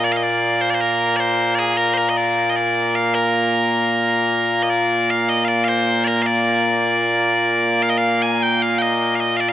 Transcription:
Already playing: A#2 A#3
0.04 D5
0.12 F5
0.16 D#5
0.24 D5
0.61 C5
0.70 D5
0.74 C5
0.81 A#4
1.16 C5 D5
1.55 D5
1.59 G#4
1.77 A#4
1.94 A#4 C5
2.09 D#5
2.17 D5
2.50 D#5
2.56 D5
2.95 F5
3.15 A#4
4.63 D#5
4.70 D5
5.10 F5
5.29 D#5
5.45 D5 F5
5.64 F5
5.68 C5
6.04 A#4 D5
6.22 D5 F5
7.82 F5
7.89 D#5
7.97 F5
8.22 G#5
8.43 G5
8.62 F5
8.78 D#5 G5
9.15 F5
9.20 D#5
9.36 D5 F5
9.49 F5

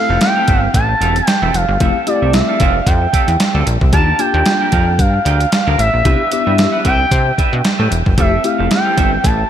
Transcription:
Already playing: A3 C4 E4 A4 F5
0.09 F1 C4 G4 A4 F5
0.21 G5, muted clean electric guitar stroke, snare, closed hi-hat
0.36 C4 G4 A4 F5
0.48 G1 C4 G4 A4 E5, kick, closed hi-hat
0.63 muted clean electric guitar stroke
0.74 A1 A5, muted clean electric guitar stroke, kick, closed hi-hat
0.89 muted clean electric guitar stroke
1.01 E1 C4 G4 A4 F5, closed hi-hat
1.16 muted clean electric guitar stroke, closed hi-hat
1.27 G5, muted clean electric guitar stroke, snare, closed hi-hat
1.42 E1 C4 G4 A4 E5
1.54 F1 F5, muted clean electric guitar stroke, closed hi-hat
1.69 G1, muted clean electric guitar stroke
1.80 F1 A3 C4 E4 G4 A4 E5, kick, closed hi-hat
2.07 A3 C4 E4 G4 D5, muted clean electric guitar stroke, closed hi-hat
2.22 C2 C4 G4 A4 E5
2.33 E5, muted clean electric guitar stroke, snare, closed hi-hat
2.49 C4 G4 A4 F5
2.60 F1 C4 G4 A4 E5 F5, kick, closed hi-hat
2.75 muted clean electric guitar stroke
2.87 F2 G5, muted clean electric guitar stroke, kick, closed hi-hat
3.02 muted clean electric guitar stroke
3.13 C4 G4 A4 E5, kick, closed hi-hat
3.28 E2, muted clean electric guitar stroke, closed hi-hat
3.40 muted clean electric guitar stroke, snare, closed hi-hat
3.54 D2 C4 G4 A4 E5
3.66 A#1, muted clean electric guitar stroke, closed hi-hat
3.81 C2, muted clean electric guitar stroke, kick
3.92 D#2 A#3 D4 F4 G4 A#4 F5 A5, kick, closed hi-hat
4.19 A#3 D4 F4 G4 G5, muted clean electric guitar stroke, closed hi-hat
4.34 D#2 D4 G4 A#4 G5
4.46 muted clean electric guitar stroke, snare, closed hi-hat
4.61 D4 G4 A#4 G5
4.72 F2 D4 G4 A#4 F5, kick, closed hi-hat
4.87 muted clean electric guitar stroke
4.99 G2 F5, muted clean electric guitar stroke, kick, closed hi-hat
5.14 muted clean electric guitar stroke
5.25 D2 D4 G4 A#4 G5, closed hi-hat
5.40 muted clean electric guitar stroke, closed hi-hat
5.52 muted clean electric guitar stroke, snare, closed hi-hat
5.67 D2 D4 G4 A#4 F5
5.78 A1 E5, muted clean electric guitar stroke, closed hi-hat
5.93 A#1, muted clean electric guitar stroke
6.05 C2 B3 D4 E4 G4 B4 E5, kick, closed hi-hat
6.31 B3 D4 E4 G4, muted clean electric guitar stroke, closed hi-hat
6.46 G2 D4 G4 B4 E5
6.58 muted clean electric guitar stroke, snare, closed hi-hat
6.72 D4 G4 B4 F#5
6.84 C2 D4 G4 B4 E5 G5, kick, closed hi-hat
6.99 muted clean electric guitar stroke
7.11 C3, muted clean electric guitar stroke, kick, closed hi-hat
7.26 muted clean electric guitar stroke
7.38 D4 G4 B4 E5, kick, closed hi-hat
7.53 B2, muted clean electric guitar stroke
7.64 muted clean electric guitar stroke, snare, closed hi-hat
7.79 A2 D4 G4 B4 E5
7.91 E1, muted clean electric guitar stroke, closed hi-hat
8.06 F#1, muted clean electric guitar stroke, kick
8.17 F1 A3 C4 E4 G4 A4 E5, kick, closed hi-hat
8.44 A3 C4 E4 G4 F5, muted clean electric guitar stroke, closed hi-hat
8.58 F1 C4 G4 A4 F5
8.70 G5, muted clean electric guitar stroke, snare, closed hi-hat
8.85 C4 G4 A4 F5
8.96 G1 C4 G4 A4 E5, kick, closed hi-hat
9.12 muted clean electric guitar stroke
9.23 A1 A5, muted clean electric guitar stroke, kick, closed hi-hat
9.38 muted clean electric guitar stroke

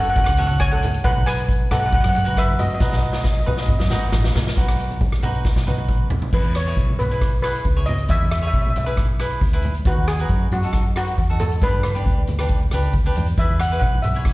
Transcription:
Already playing: F#1 F#4 A4 C#5
0.00 F#5
0.05 closed hi-hat
0.10 F#5
0.15 F#5, kick, closed hi-hat, low conga
0.24 F#5, cross-stick
0.29 C#2 F#5
0.37 F#4 A4 C#5 F#5, closed hi-hat, low conga
0.47 F#5, closed hi-hat
0.51 high conga
0.60 C#5 G#5, kick, cross-stick, closed hi-hat
0.72 A4 F#5, high conga
0.83 closed hi-hat, low conga
0.94 closed hi-hat
1.04 B1 D#4 F#4 B4 F#5, kick, closed hi-hat
1.17 high conga
1.26 B4 G#5, cross-stick, closed hi-hat
1.38 closed hi-hat
1.49 kick, closed hi-hat
1.71 B1 D#4 F#4 A4 B4 F#5, cross-stick, closed hi-hat, low conga
1.80 F#5, closed hi-hat
1.86 F#5
1.93 F#5, kick, closed hi-hat, low conga
2.01 F#2 F#5, cross-stick
2.09 F#5
2.15 F#5, closed hi-hat, low conga
2.24 D#4 F#4 B4 F#5, closed hi-hat, high conga
2.37 B4 E5, kick, cross-stick, closed hi-hat
2.50 high conga
2.59 F#4 D#5, closed hi-hat, low conga
2.66 D#5, closed hi-hat
2.74 D#5
2.80 B1 D#4 F#4 B4 D#5, kick, snare
2.89 D#5, snare
2.94 D#5, high conga
3.03 D#5
3.12 D#5, snare
3.19 D#5
3.24 D#5, kick, snare
3.33 D#5
3.40 D#5
3.46 B1 D#4 F#4 B4 D#5, low conga
3.56 D#5, snare
3.62 D#5
3.68 D#5, kick, low conga
3.79 F#2 D#5, snare
3.86 G#1 F#4 D#5, snare
3.91 D#4 B4 D#5, low conga
4.12 A1, kick, snare
4.24 snare, high conga
4.35 B1, snare, high conga, low conga
4.47 snare
4.57 B1 D#4 F#4 B4, kick, closed hi-hat
4.68 cross-stick
4.79 closed hi-hat
4.91 closed hi-hat, high conga
5.01 kick, closed hi-hat, low conga
5.12 cross-stick
5.23 B1 D#4 F#4 B4, closed hi-hat, low conga
5.35 closed hi-hat
5.45 kick, snare
5.56 B1, snare
5.67 D#4 F#4 B4, high conga, low conga
5.78 high tom
5.89 kick, mid tom
6.10 floor tom, low conga
6.22 floor tom
6.33 E2 E4 G#4 B4, kick, crash
6.44 high conga
6.55 C#5, cross-stick, closed hi-hat
6.66 E4 G#4 C#5, closed hi-hat
6.77 B1, kick, closed hi-hat
6.89 high conga
6.99 B1 B4, closed hi-hat, low conga
7.11 E4 G#4 B4, closed hi-hat
7.21 kick, cross-stick, closed hi-hat, high conga
7.42 E4 G#4 B4, cross-stick, closed hi-hat
7.55 closed hi-hat
7.65 C#2, kick, closed hi-hat
7.77 E4 G#4 C#5
7.86 D#5, closed hi-hat, low conga
7.98 closed hi-hat
8.08 E2 E4 G#4 C#5 E5, kick, closed hi-hat
8.22 high conga
8.31 E5, cross-stick, closed hi-hat
8.38 C#5 E5
8.43 E4 G#4, closed hi-hat
8.47 E5
8.53 B1 E5, kick, closed hi-hat
8.62 E5
8.66 E5, high conga
8.76 B1 E5, closed hi-hat, low conga
8.85 E4 G#4 B4 E5, closed hi-hat
8.97 kick, cross-stick, closed hi-hat, high conga
9.19 E4 G#4 B4, cross-stick, closed hi-hat
9.31 closed hi-hat
9.41 D2, kick, closed hi-hat
9.53 E4 G#4 B4
9.62 closed hi-hat, low conga
9.75 closed hi-hat
9.85 D#2 D#4 F#4 B4, kick, closed hi-hat
9.98 high conga
10.08 G#4, cross-stick, closed hi-hat
10.19 D#4 F#4 B4, closed hi-hat
10.29 F#2, kick, closed hi-hat
10.51 F#2 F#4, closed hi-hat, low conga
10.63 D#4 F#4 A4, closed hi-hat
10.73 kick, cross-stick, closed hi-hat, high conga
10.96 D#4 F#4 B4, cross-stick, closed hi-hat
11.08 closed hi-hat
11.18 E2, kick, closed hi-hat
11.30 D#4 F#4 A4
11.40 A4, closed hi-hat, low conga
11.52 closed hi-hat
11.62 G2 D4 G4 B4, kick, closed hi-hat
11.74 high conga
11.83 B4, cross-stick, closed hi-hat, high conga
11.95 D4 G4 B4, closed hi-hat, low conga
12.06 D2, kick, closed hi-hat
12.18 high conga
12.27 D2, closed hi-hat, low conga
12.39 D4 G4 B4, cross-stick, closed hi-hat, high conga
12.49 kick, closed hi-hat, high conga
12.71 C#2 D4 G4 B4, cross-stick, closed hi-hat
12.83 closed hi-hat
12.93 D2, kick, closed hi-hat
13.06 D4 G4 B4
13.15 E2, closed hi-hat, low conga
13.26 closed hi-hat
13.37 E2 E4 G#4 B4 E5, kick, closed hi-hat
13.49 high conga
13.60 F#5, cross-stick, closed hi-hat
13.71 E4 G#4 B4, closed hi-hat
13.79 B1 F#5, kick, closed hi-hat
13.94 high conga
14.02 B1 E5, closed hi-hat, low conga
14.14 E4 G#4 C#5, closed hi-hat
14.25 kick, cross-stick, closed hi-hat, high conga

